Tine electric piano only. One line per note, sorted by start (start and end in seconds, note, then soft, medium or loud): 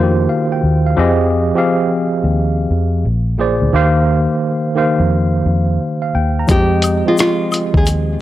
0.00 0.99 D#3 loud
0.00 0.99 A#3 loud
0.00 0.99 F4 loud
0.00 0.99 F#4 medium
0.00 0.03 G4 loud
0.00 0.70 G4 medium
0.00 0.99 C5 loud
0.29 0.50 F5 medium
0.52 0.84 G5 medium
0.86 1.19 F5 medium
0.97 1.33 F3 loud
0.97 1.33 C4 loud
0.97 1.33 G4 loud
0.97 1.34 G#4 loud
0.97 1.34 D#5 loud
1.55 2.46 F3 medium
1.55 2.46 C4 medium
1.55 2.47 G4 medium
1.55 2.47 G#4 medium
1.55 2.48 F5 loud
3.38 3.65 A#2 medium
3.38 3.65 A#3 medium
3.38 3.66 G#4 medium
3.38 3.66 C5 medium
3.38 3.67 D5 medium
3.73 4.44 D#3 loud
3.73 4.45 A#3 loud
3.73 4.45 G4 loud
3.73 4.45 C5 loud
3.73 4.46 F5 loud
4.75 5.27 D#3 medium
4.75 5.27 A#3 medium
4.75 5.28 G4 medium
4.75 5.28 C5 medium
4.75 5.28 F5 medium
6.02 6.14 F5 medium
6.15 6.36 G5 medium
6.39 6.71 A#5 medium
6.47 6.84 F3 medium
6.47 6.85 G#3 loud
6.47 6.84 C4 medium
6.47 6.84 G4 medium
6.47 6.85 D#5 loud
7.06 7.97 F3 medium
7.06 7.98 C4 medium
7.06 7.98 G4 medium
7.06 7.99 G#4 medium
7.06 7.99 D#5 medium